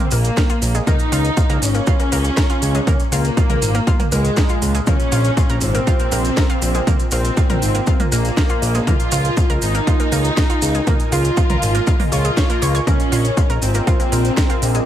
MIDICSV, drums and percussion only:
0, 0, Header, 1, 2, 480
1, 0, Start_track
1, 0, Key_signature, -5, "minor"
1, 0, Tempo, 500000
1, 837, Time_signature, 4, 2, 24, 8
1, 14261, End_track
2, 0, Start_track
2, 0, Title_t, "Drums"
2, 106, Note_on_c, 9, 70, 92
2, 115, Note_on_c, 9, 46, 108
2, 202, Note_off_c, 9, 70, 0
2, 211, Note_off_c, 9, 46, 0
2, 233, Note_on_c, 9, 70, 41
2, 237, Note_on_c, 9, 42, 56
2, 329, Note_off_c, 9, 70, 0
2, 333, Note_off_c, 9, 42, 0
2, 356, Note_on_c, 9, 38, 125
2, 356, Note_on_c, 9, 42, 59
2, 357, Note_on_c, 9, 36, 125
2, 360, Note_on_c, 9, 70, 52
2, 452, Note_off_c, 9, 38, 0
2, 452, Note_off_c, 9, 42, 0
2, 453, Note_off_c, 9, 36, 0
2, 456, Note_off_c, 9, 70, 0
2, 474, Note_on_c, 9, 70, 28
2, 477, Note_on_c, 9, 42, 58
2, 570, Note_off_c, 9, 70, 0
2, 573, Note_off_c, 9, 42, 0
2, 595, Note_on_c, 9, 70, 92
2, 596, Note_on_c, 9, 46, 110
2, 691, Note_off_c, 9, 70, 0
2, 692, Note_off_c, 9, 46, 0
2, 717, Note_on_c, 9, 42, 55
2, 718, Note_on_c, 9, 70, 40
2, 813, Note_off_c, 9, 42, 0
2, 814, Note_off_c, 9, 70, 0
2, 836, Note_on_c, 9, 42, 58
2, 836, Note_on_c, 9, 45, 82
2, 837, Note_on_c, 9, 36, 122
2, 837, Note_on_c, 9, 70, 55
2, 932, Note_off_c, 9, 42, 0
2, 932, Note_off_c, 9, 45, 0
2, 933, Note_off_c, 9, 36, 0
2, 933, Note_off_c, 9, 70, 0
2, 951, Note_on_c, 9, 70, 28
2, 957, Note_on_c, 9, 42, 57
2, 1047, Note_off_c, 9, 70, 0
2, 1053, Note_off_c, 9, 42, 0
2, 1076, Note_on_c, 9, 46, 114
2, 1081, Note_on_c, 9, 70, 95
2, 1172, Note_off_c, 9, 46, 0
2, 1177, Note_off_c, 9, 70, 0
2, 1197, Note_on_c, 9, 42, 55
2, 1199, Note_on_c, 9, 70, 39
2, 1293, Note_off_c, 9, 42, 0
2, 1295, Note_off_c, 9, 70, 0
2, 1314, Note_on_c, 9, 70, 58
2, 1315, Note_on_c, 9, 42, 56
2, 1317, Note_on_c, 9, 36, 127
2, 1410, Note_off_c, 9, 70, 0
2, 1411, Note_off_c, 9, 42, 0
2, 1413, Note_off_c, 9, 36, 0
2, 1436, Note_on_c, 9, 42, 56
2, 1436, Note_on_c, 9, 70, 27
2, 1532, Note_off_c, 9, 42, 0
2, 1532, Note_off_c, 9, 70, 0
2, 1555, Note_on_c, 9, 46, 111
2, 1561, Note_on_c, 9, 70, 103
2, 1651, Note_off_c, 9, 46, 0
2, 1657, Note_off_c, 9, 70, 0
2, 1676, Note_on_c, 9, 42, 53
2, 1678, Note_on_c, 9, 70, 40
2, 1772, Note_off_c, 9, 42, 0
2, 1774, Note_off_c, 9, 70, 0
2, 1792, Note_on_c, 9, 70, 58
2, 1795, Note_on_c, 9, 42, 54
2, 1797, Note_on_c, 9, 36, 124
2, 1888, Note_off_c, 9, 70, 0
2, 1891, Note_off_c, 9, 42, 0
2, 1893, Note_off_c, 9, 36, 0
2, 1916, Note_on_c, 9, 42, 54
2, 1918, Note_on_c, 9, 70, 27
2, 2012, Note_off_c, 9, 42, 0
2, 2014, Note_off_c, 9, 70, 0
2, 2036, Note_on_c, 9, 46, 113
2, 2037, Note_on_c, 9, 70, 89
2, 2132, Note_off_c, 9, 46, 0
2, 2133, Note_off_c, 9, 70, 0
2, 2153, Note_on_c, 9, 70, 41
2, 2157, Note_on_c, 9, 42, 55
2, 2249, Note_off_c, 9, 70, 0
2, 2253, Note_off_c, 9, 42, 0
2, 2274, Note_on_c, 9, 70, 58
2, 2276, Note_on_c, 9, 38, 124
2, 2276, Note_on_c, 9, 42, 56
2, 2277, Note_on_c, 9, 36, 123
2, 2370, Note_off_c, 9, 70, 0
2, 2372, Note_off_c, 9, 38, 0
2, 2372, Note_off_c, 9, 42, 0
2, 2373, Note_off_c, 9, 36, 0
2, 2397, Note_on_c, 9, 42, 56
2, 2400, Note_on_c, 9, 70, 26
2, 2493, Note_off_c, 9, 42, 0
2, 2496, Note_off_c, 9, 70, 0
2, 2515, Note_on_c, 9, 46, 108
2, 2519, Note_on_c, 9, 70, 92
2, 2611, Note_off_c, 9, 46, 0
2, 2615, Note_off_c, 9, 70, 0
2, 2637, Note_on_c, 9, 42, 54
2, 2641, Note_on_c, 9, 70, 43
2, 2733, Note_off_c, 9, 42, 0
2, 2737, Note_off_c, 9, 70, 0
2, 2756, Note_on_c, 9, 42, 56
2, 2756, Note_on_c, 9, 45, 81
2, 2757, Note_on_c, 9, 36, 122
2, 2763, Note_on_c, 9, 70, 53
2, 2852, Note_off_c, 9, 42, 0
2, 2852, Note_off_c, 9, 45, 0
2, 2853, Note_off_c, 9, 36, 0
2, 2859, Note_off_c, 9, 70, 0
2, 2875, Note_on_c, 9, 70, 27
2, 2877, Note_on_c, 9, 42, 54
2, 2971, Note_off_c, 9, 70, 0
2, 2973, Note_off_c, 9, 42, 0
2, 2996, Note_on_c, 9, 46, 107
2, 2997, Note_on_c, 9, 70, 96
2, 3092, Note_off_c, 9, 46, 0
2, 3093, Note_off_c, 9, 70, 0
2, 3116, Note_on_c, 9, 70, 44
2, 3117, Note_on_c, 9, 42, 53
2, 3212, Note_off_c, 9, 70, 0
2, 3213, Note_off_c, 9, 42, 0
2, 3236, Note_on_c, 9, 42, 54
2, 3237, Note_on_c, 9, 36, 124
2, 3239, Note_on_c, 9, 70, 60
2, 3332, Note_off_c, 9, 42, 0
2, 3333, Note_off_c, 9, 36, 0
2, 3335, Note_off_c, 9, 70, 0
2, 3357, Note_on_c, 9, 42, 55
2, 3357, Note_on_c, 9, 45, 85
2, 3359, Note_on_c, 9, 70, 27
2, 3453, Note_off_c, 9, 42, 0
2, 3453, Note_off_c, 9, 45, 0
2, 3455, Note_off_c, 9, 70, 0
2, 3476, Note_on_c, 9, 46, 110
2, 3477, Note_on_c, 9, 70, 96
2, 3572, Note_off_c, 9, 46, 0
2, 3573, Note_off_c, 9, 70, 0
2, 3596, Note_on_c, 9, 70, 41
2, 3597, Note_on_c, 9, 42, 52
2, 3692, Note_off_c, 9, 70, 0
2, 3693, Note_off_c, 9, 42, 0
2, 3716, Note_on_c, 9, 42, 53
2, 3717, Note_on_c, 9, 36, 121
2, 3720, Note_on_c, 9, 70, 50
2, 3812, Note_off_c, 9, 42, 0
2, 3813, Note_off_c, 9, 36, 0
2, 3816, Note_off_c, 9, 70, 0
2, 3837, Note_on_c, 9, 42, 53
2, 3837, Note_on_c, 9, 45, 93
2, 3838, Note_on_c, 9, 70, 29
2, 3933, Note_off_c, 9, 42, 0
2, 3933, Note_off_c, 9, 45, 0
2, 3934, Note_off_c, 9, 70, 0
2, 3953, Note_on_c, 9, 70, 103
2, 3956, Note_on_c, 9, 46, 112
2, 4049, Note_off_c, 9, 70, 0
2, 4052, Note_off_c, 9, 46, 0
2, 4076, Note_on_c, 9, 42, 54
2, 4080, Note_on_c, 9, 70, 39
2, 4172, Note_off_c, 9, 42, 0
2, 4176, Note_off_c, 9, 70, 0
2, 4189, Note_on_c, 9, 70, 49
2, 4196, Note_on_c, 9, 38, 118
2, 4196, Note_on_c, 9, 42, 53
2, 4197, Note_on_c, 9, 36, 127
2, 4285, Note_off_c, 9, 70, 0
2, 4292, Note_off_c, 9, 38, 0
2, 4292, Note_off_c, 9, 42, 0
2, 4293, Note_off_c, 9, 36, 0
2, 4309, Note_on_c, 9, 70, 29
2, 4316, Note_on_c, 9, 42, 53
2, 4405, Note_off_c, 9, 70, 0
2, 4412, Note_off_c, 9, 42, 0
2, 4435, Note_on_c, 9, 46, 108
2, 4436, Note_on_c, 9, 70, 89
2, 4531, Note_off_c, 9, 46, 0
2, 4532, Note_off_c, 9, 70, 0
2, 4556, Note_on_c, 9, 42, 53
2, 4561, Note_on_c, 9, 70, 40
2, 4652, Note_off_c, 9, 42, 0
2, 4657, Note_off_c, 9, 70, 0
2, 4672, Note_on_c, 9, 70, 55
2, 4676, Note_on_c, 9, 42, 55
2, 4676, Note_on_c, 9, 45, 85
2, 4677, Note_on_c, 9, 36, 118
2, 4768, Note_off_c, 9, 70, 0
2, 4772, Note_off_c, 9, 42, 0
2, 4772, Note_off_c, 9, 45, 0
2, 4773, Note_off_c, 9, 36, 0
2, 4797, Note_on_c, 9, 42, 53
2, 4800, Note_on_c, 9, 70, 26
2, 4893, Note_off_c, 9, 42, 0
2, 4896, Note_off_c, 9, 70, 0
2, 4914, Note_on_c, 9, 70, 86
2, 4916, Note_on_c, 9, 46, 106
2, 5010, Note_off_c, 9, 70, 0
2, 5012, Note_off_c, 9, 46, 0
2, 5033, Note_on_c, 9, 70, 38
2, 5037, Note_on_c, 9, 42, 54
2, 5129, Note_off_c, 9, 70, 0
2, 5133, Note_off_c, 9, 42, 0
2, 5155, Note_on_c, 9, 42, 54
2, 5157, Note_on_c, 9, 36, 120
2, 5158, Note_on_c, 9, 70, 52
2, 5251, Note_off_c, 9, 42, 0
2, 5253, Note_off_c, 9, 36, 0
2, 5254, Note_off_c, 9, 70, 0
2, 5273, Note_on_c, 9, 70, 26
2, 5276, Note_on_c, 9, 42, 53
2, 5369, Note_off_c, 9, 70, 0
2, 5372, Note_off_c, 9, 42, 0
2, 5385, Note_on_c, 9, 70, 94
2, 5395, Note_on_c, 9, 46, 106
2, 5481, Note_off_c, 9, 70, 0
2, 5491, Note_off_c, 9, 46, 0
2, 5516, Note_on_c, 9, 42, 54
2, 5518, Note_on_c, 9, 70, 37
2, 5612, Note_off_c, 9, 42, 0
2, 5614, Note_off_c, 9, 70, 0
2, 5635, Note_on_c, 9, 42, 55
2, 5637, Note_on_c, 9, 36, 115
2, 5637, Note_on_c, 9, 70, 49
2, 5731, Note_off_c, 9, 42, 0
2, 5733, Note_off_c, 9, 36, 0
2, 5733, Note_off_c, 9, 70, 0
2, 5755, Note_on_c, 9, 70, 29
2, 5756, Note_on_c, 9, 42, 54
2, 5851, Note_off_c, 9, 70, 0
2, 5852, Note_off_c, 9, 42, 0
2, 5872, Note_on_c, 9, 70, 95
2, 5875, Note_on_c, 9, 46, 109
2, 5968, Note_off_c, 9, 70, 0
2, 5971, Note_off_c, 9, 46, 0
2, 5997, Note_on_c, 9, 42, 55
2, 6001, Note_on_c, 9, 70, 42
2, 6093, Note_off_c, 9, 42, 0
2, 6097, Note_off_c, 9, 70, 0
2, 6115, Note_on_c, 9, 38, 116
2, 6115, Note_on_c, 9, 42, 54
2, 6116, Note_on_c, 9, 70, 54
2, 6117, Note_on_c, 9, 36, 121
2, 6211, Note_off_c, 9, 38, 0
2, 6211, Note_off_c, 9, 42, 0
2, 6212, Note_off_c, 9, 70, 0
2, 6213, Note_off_c, 9, 36, 0
2, 6237, Note_on_c, 9, 42, 55
2, 6245, Note_on_c, 9, 70, 25
2, 6333, Note_off_c, 9, 42, 0
2, 6341, Note_off_c, 9, 70, 0
2, 6354, Note_on_c, 9, 70, 88
2, 6355, Note_on_c, 9, 46, 108
2, 6450, Note_off_c, 9, 70, 0
2, 6451, Note_off_c, 9, 46, 0
2, 6477, Note_on_c, 9, 42, 54
2, 6477, Note_on_c, 9, 70, 41
2, 6573, Note_off_c, 9, 42, 0
2, 6573, Note_off_c, 9, 70, 0
2, 6596, Note_on_c, 9, 42, 58
2, 6596, Note_on_c, 9, 45, 87
2, 6597, Note_on_c, 9, 36, 112
2, 6599, Note_on_c, 9, 70, 51
2, 6692, Note_off_c, 9, 42, 0
2, 6692, Note_off_c, 9, 45, 0
2, 6693, Note_off_c, 9, 36, 0
2, 6695, Note_off_c, 9, 70, 0
2, 6715, Note_on_c, 9, 70, 28
2, 6717, Note_on_c, 9, 42, 56
2, 6811, Note_off_c, 9, 70, 0
2, 6813, Note_off_c, 9, 42, 0
2, 6827, Note_on_c, 9, 70, 97
2, 6836, Note_on_c, 9, 46, 103
2, 6923, Note_off_c, 9, 70, 0
2, 6932, Note_off_c, 9, 46, 0
2, 6957, Note_on_c, 9, 42, 58
2, 6957, Note_on_c, 9, 70, 36
2, 7053, Note_off_c, 9, 42, 0
2, 7053, Note_off_c, 9, 70, 0
2, 7073, Note_on_c, 9, 70, 55
2, 7077, Note_on_c, 9, 36, 117
2, 7077, Note_on_c, 9, 42, 57
2, 7169, Note_off_c, 9, 70, 0
2, 7173, Note_off_c, 9, 36, 0
2, 7173, Note_off_c, 9, 42, 0
2, 7197, Note_on_c, 9, 42, 55
2, 7197, Note_on_c, 9, 45, 87
2, 7199, Note_on_c, 9, 70, 27
2, 7293, Note_off_c, 9, 42, 0
2, 7293, Note_off_c, 9, 45, 0
2, 7295, Note_off_c, 9, 70, 0
2, 7316, Note_on_c, 9, 46, 100
2, 7317, Note_on_c, 9, 70, 91
2, 7412, Note_off_c, 9, 46, 0
2, 7413, Note_off_c, 9, 70, 0
2, 7437, Note_on_c, 9, 42, 55
2, 7437, Note_on_c, 9, 70, 37
2, 7533, Note_off_c, 9, 42, 0
2, 7533, Note_off_c, 9, 70, 0
2, 7551, Note_on_c, 9, 70, 49
2, 7557, Note_on_c, 9, 36, 114
2, 7557, Note_on_c, 9, 42, 55
2, 7647, Note_off_c, 9, 70, 0
2, 7653, Note_off_c, 9, 36, 0
2, 7653, Note_off_c, 9, 42, 0
2, 7678, Note_on_c, 9, 42, 55
2, 7678, Note_on_c, 9, 45, 100
2, 7684, Note_on_c, 9, 70, 28
2, 7774, Note_off_c, 9, 42, 0
2, 7774, Note_off_c, 9, 45, 0
2, 7780, Note_off_c, 9, 70, 0
2, 7796, Note_on_c, 9, 70, 97
2, 7797, Note_on_c, 9, 46, 105
2, 7892, Note_off_c, 9, 70, 0
2, 7893, Note_off_c, 9, 46, 0
2, 7918, Note_on_c, 9, 42, 55
2, 7918, Note_on_c, 9, 70, 43
2, 8014, Note_off_c, 9, 42, 0
2, 8014, Note_off_c, 9, 70, 0
2, 8037, Note_on_c, 9, 36, 117
2, 8037, Note_on_c, 9, 38, 115
2, 8037, Note_on_c, 9, 42, 58
2, 8039, Note_on_c, 9, 70, 48
2, 8133, Note_off_c, 9, 36, 0
2, 8133, Note_off_c, 9, 38, 0
2, 8133, Note_off_c, 9, 42, 0
2, 8135, Note_off_c, 9, 70, 0
2, 8150, Note_on_c, 9, 70, 27
2, 8158, Note_on_c, 9, 42, 57
2, 8246, Note_off_c, 9, 70, 0
2, 8254, Note_off_c, 9, 42, 0
2, 8277, Note_on_c, 9, 46, 101
2, 8281, Note_on_c, 9, 70, 89
2, 8373, Note_off_c, 9, 46, 0
2, 8377, Note_off_c, 9, 70, 0
2, 8396, Note_on_c, 9, 70, 38
2, 8398, Note_on_c, 9, 42, 57
2, 8492, Note_off_c, 9, 70, 0
2, 8494, Note_off_c, 9, 42, 0
2, 8517, Note_on_c, 9, 36, 108
2, 8517, Note_on_c, 9, 42, 60
2, 8517, Note_on_c, 9, 45, 85
2, 8522, Note_on_c, 9, 70, 50
2, 8613, Note_off_c, 9, 36, 0
2, 8613, Note_off_c, 9, 42, 0
2, 8613, Note_off_c, 9, 45, 0
2, 8618, Note_off_c, 9, 70, 0
2, 8637, Note_on_c, 9, 70, 27
2, 8638, Note_on_c, 9, 42, 59
2, 8733, Note_off_c, 9, 70, 0
2, 8734, Note_off_c, 9, 42, 0
2, 8751, Note_on_c, 9, 70, 93
2, 8757, Note_on_c, 9, 46, 100
2, 8847, Note_off_c, 9, 70, 0
2, 8853, Note_off_c, 9, 46, 0
2, 8877, Note_on_c, 9, 70, 40
2, 8878, Note_on_c, 9, 42, 60
2, 8973, Note_off_c, 9, 70, 0
2, 8974, Note_off_c, 9, 42, 0
2, 8992, Note_on_c, 9, 70, 53
2, 8997, Note_on_c, 9, 36, 115
2, 8997, Note_on_c, 9, 42, 61
2, 9088, Note_off_c, 9, 70, 0
2, 9093, Note_off_c, 9, 36, 0
2, 9093, Note_off_c, 9, 42, 0
2, 9118, Note_on_c, 9, 42, 60
2, 9127, Note_on_c, 9, 70, 23
2, 9214, Note_off_c, 9, 42, 0
2, 9223, Note_off_c, 9, 70, 0
2, 9232, Note_on_c, 9, 70, 93
2, 9237, Note_on_c, 9, 46, 100
2, 9328, Note_off_c, 9, 70, 0
2, 9333, Note_off_c, 9, 46, 0
2, 9358, Note_on_c, 9, 42, 56
2, 9358, Note_on_c, 9, 70, 34
2, 9454, Note_off_c, 9, 42, 0
2, 9454, Note_off_c, 9, 70, 0
2, 9477, Note_on_c, 9, 36, 114
2, 9477, Note_on_c, 9, 42, 58
2, 9479, Note_on_c, 9, 70, 48
2, 9573, Note_off_c, 9, 36, 0
2, 9573, Note_off_c, 9, 42, 0
2, 9575, Note_off_c, 9, 70, 0
2, 9598, Note_on_c, 9, 42, 57
2, 9601, Note_on_c, 9, 70, 26
2, 9694, Note_off_c, 9, 42, 0
2, 9697, Note_off_c, 9, 70, 0
2, 9716, Note_on_c, 9, 70, 81
2, 9717, Note_on_c, 9, 46, 102
2, 9812, Note_off_c, 9, 70, 0
2, 9813, Note_off_c, 9, 46, 0
2, 9834, Note_on_c, 9, 70, 39
2, 9838, Note_on_c, 9, 42, 58
2, 9930, Note_off_c, 9, 70, 0
2, 9934, Note_off_c, 9, 42, 0
2, 9957, Note_on_c, 9, 36, 119
2, 9957, Note_on_c, 9, 38, 120
2, 9957, Note_on_c, 9, 42, 60
2, 9957, Note_on_c, 9, 70, 46
2, 10053, Note_off_c, 9, 36, 0
2, 10053, Note_off_c, 9, 38, 0
2, 10053, Note_off_c, 9, 42, 0
2, 10053, Note_off_c, 9, 70, 0
2, 10077, Note_on_c, 9, 42, 59
2, 10085, Note_on_c, 9, 70, 27
2, 10173, Note_off_c, 9, 42, 0
2, 10181, Note_off_c, 9, 70, 0
2, 10194, Note_on_c, 9, 70, 89
2, 10197, Note_on_c, 9, 46, 102
2, 10290, Note_off_c, 9, 70, 0
2, 10293, Note_off_c, 9, 46, 0
2, 10315, Note_on_c, 9, 70, 36
2, 10318, Note_on_c, 9, 42, 57
2, 10411, Note_off_c, 9, 70, 0
2, 10414, Note_off_c, 9, 42, 0
2, 10434, Note_on_c, 9, 70, 50
2, 10436, Note_on_c, 9, 42, 62
2, 10436, Note_on_c, 9, 45, 82
2, 10437, Note_on_c, 9, 36, 112
2, 10530, Note_off_c, 9, 70, 0
2, 10532, Note_off_c, 9, 42, 0
2, 10532, Note_off_c, 9, 45, 0
2, 10533, Note_off_c, 9, 36, 0
2, 10557, Note_on_c, 9, 42, 58
2, 10558, Note_on_c, 9, 70, 25
2, 10653, Note_off_c, 9, 42, 0
2, 10654, Note_off_c, 9, 70, 0
2, 10676, Note_on_c, 9, 46, 103
2, 10677, Note_on_c, 9, 70, 89
2, 10772, Note_off_c, 9, 46, 0
2, 10773, Note_off_c, 9, 70, 0
2, 10796, Note_on_c, 9, 70, 41
2, 10797, Note_on_c, 9, 42, 59
2, 10892, Note_off_c, 9, 70, 0
2, 10893, Note_off_c, 9, 42, 0
2, 10914, Note_on_c, 9, 70, 51
2, 10917, Note_on_c, 9, 36, 116
2, 10917, Note_on_c, 9, 42, 59
2, 11010, Note_off_c, 9, 70, 0
2, 11013, Note_off_c, 9, 36, 0
2, 11013, Note_off_c, 9, 42, 0
2, 11038, Note_on_c, 9, 42, 60
2, 11038, Note_on_c, 9, 45, 87
2, 11039, Note_on_c, 9, 70, 25
2, 11134, Note_off_c, 9, 42, 0
2, 11134, Note_off_c, 9, 45, 0
2, 11135, Note_off_c, 9, 70, 0
2, 11156, Note_on_c, 9, 46, 105
2, 11161, Note_on_c, 9, 70, 95
2, 11252, Note_off_c, 9, 46, 0
2, 11257, Note_off_c, 9, 70, 0
2, 11277, Note_on_c, 9, 42, 59
2, 11278, Note_on_c, 9, 70, 36
2, 11373, Note_off_c, 9, 42, 0
2, 11374, Note_off_c, 9, 70, 0
2, 11393, Note_on_c, 9, 70, 51
2, 11397, Note_on_c, 9, 36, 113
2, 11397, Note_on_c, 9, 42, 60
2, 11489, Note_off_c, 9, 70, 0
2, 11493, Note_off_c, 9, 36, 0
2, 11493, Note_off_c, 9, 42, 0
2, 11515, Note_on_c, 9, 70, 27
2, 11517, Note_on_c, 9, 45, 93
2, 11517, Note_on_c, 9, 46, 61
2, 11611, Note_off_c, 9, 70, 0
2, 11613, Note_off_c, 9, 45, 0
2, 11613, Note_off_c, 9, 46, 0
2, 11637, Note_on_c, 9, 46, 105
2, 11638, Note_on_c, 9, 70, 91
2, 11733, Note_off_c, 9, 46, 0
2, 11734, Note_off_c, 9, 70, 0
2, 11754, Note_on_c, 9, 70, 40
2, 11758, Note_on_c, 9, 42, 58
2, 11850, Note_off_c, 9, 70, 0
2, 11854, Note_off_c, 9, 42, 0
2, 11876, Note_on_c, 9, 70, 52
2, 11877, Note_on_c, 9, 36, 117
2, 11877, Note_on_c, 9, 38, 120
2, 11877, Note_on_c, 9, 42, 62
2, 11972, Note_off_c, 9, 70, 0
2, 11973, Note_off_c, 9, 36, 0
2, 11973, Note_off_c, 9, 38, 0
2, 11973, Note_off_c, 9, 42, 0
2, 11998, Note_on_c, 9, 42, 60
2, 11998, Note_on_c, 9, 70, 27
2, 12094, Note_off_c, 9, 42, 0
2, 12094, Note_off_c, 9, 70, 0
2, 12116, Note_on_c, 9, 70, 94
2, 12117, Note_on_c, 9, 46, 101
2, 12212, Note_off_c, 9, 70, 0
2, 12213, Note_off_c, 9, 46, 0
2, 12238, Note_on_c, 9, 42, 58
2, 12244, Note_on_c, 9, 70, 39
2, 12334, Note_off_c, 9, 42, 0
2, 12340, Note_off_c, 9, 70, 0
2, 12357, Note_on_c, 9, 36, 117
2, 12357, Note_on_c, 9, 42, 61
2, 12357, Note_on_c, 9, 45, 78
2, 12360, Note_on_c, 9, 70, 49
2, 12453, Note_off_c, 9, 36, 0
2, 12453, Note_off_c, 9, 42, 0
2, 12453, Note_off_c, 9, 45, 0
2, 12456, Note_off_c, 9, 70, 0
2, 12478, Note_on_c, 9, 42, 59
2, 12485, Note_on_c, 9, 70, 26
2, 12574, Note_off_c, 9, 42, 0
2, 12581, Note_off_c, 9, 70, 0
2, 12597, Note_on_c, 9, 46, 106
2, 12598, Note_on_c, 9, 70, 85
2, 12693, Note_off_c, 9, 46, 0
2, 12694, Note_off_c, 9, 70, 0
2, 12717, Note_on_c, 9, 70, 43
2, 12718, Note_on_c, 9, 42, 60
2, 12813, Note_off_c, 9, 70, 0
2, 12814, Note_off_c, 9, 42, 0
2, 12837, Note_on_c, 9, 36, 120
2, 12837, Note_on_c, 9, 42, 62
2, 12837, Note_on_c, 9, 70, 55
2, 12933, Note_off_c, 9, 36, 0
2, 12933, Note_off_c, 9, 42, 0
2, 12933, Note_off_c, 9, 70, 0
2, 12958, Note_on_c, 9, 42, 58
2, 12961, Note_on_c, 9, 70, 28
2, 13054, Note_off_c, 9, 42, 0
2, 13057, Note_off_c, 9, 70, 0
2, 13076, Note_on_c, 9, 46, 105
2, 13077, Note_on_c, 9, 70, 89
2, 13172, Note_off_c, 9, 46, 0
2, 13173, Note_off_c, 9, 70, 0
2, 13192, Note_on_c, 9, 70, 42
2, 13198, Note_on_c, 9, 42, 59
2, 13288, Note_off_c, 9, 70, 0
2, 13294, Note_off_c, 9, 42, 0
2, 13316, Note_on_c, 9, 42, 60
2, 13317, Note_on_c, 9, 36, 118
2, 13320, Note_on_c, 9, 70, 48
2, 13412, Note_off_c, 9, 42, 0
2, 13413, Note_off_c, 9, 36, 0
2, 13416, Note_off_c, 9, 70, 0
2, 13438, Note_on_c, 9, 42, 60
2, 13444, Note_on_c, 9, 70, 28
2, 13534, Note_off_c, 9, 42, 0
2, 13540, Note_off_c, 9, 70, 0
2, 13556, Note_on_c, 9, 46, 106
2, 13562, Note_on_c, 9, 70, 87
2, 13652, Note_off_c, 9, 46, 0
2, 13658, Note_off_c, 9, 70, 0
2, 13678, Note_on_c, 9, 42, 59
2, 13680, Note_on_c, 9, 70, 37
2, 13774, Note_off_c, 9, 42, 0
2, 13776, Note_off_c, 9, 70, 0
2, 13797, Note_on_c, 9, 36, 120
2, 13797, Note_on_c, 9, 38, 125
2, 13797, Note_on_c, 9, 42, 59
2, 13797, Note_on_c, 9, 70, 51
2, 13893, Note_off_c, 9, 36, 0
2, 13893, Note_off_c, 9, 38, 0
2, 13893, Note_off_c, 9, 42, 0
2, 13893, Note_off_c, 9, 70, 0
2, 13914, Note_on_c, 9, 70, 25
2, 13918, Note_on_c, 9, 42, 60
2, 14010, Note_off_c, 9, 70, 0
2, 14014, Note_off_c, 9, 42, 0
2, 14036, Note_on_c, 9, 46, 106
2, 14041, Note_on_c, 9, 70, 86
2, 14132, Note_off_c, 9, 46, 0
2, 14137, Note_off_c, 9, 70, 0
2, 14156, Note_on_c, 9, 70, 42
2, 14157, Note_on_c, 9, 42, 58
2, 14252, Note_off_c, 9, 70, 0
2, 14253, Note_off_c, 9, 42, 0
2, 14261, End_track
0, 0, End_of_file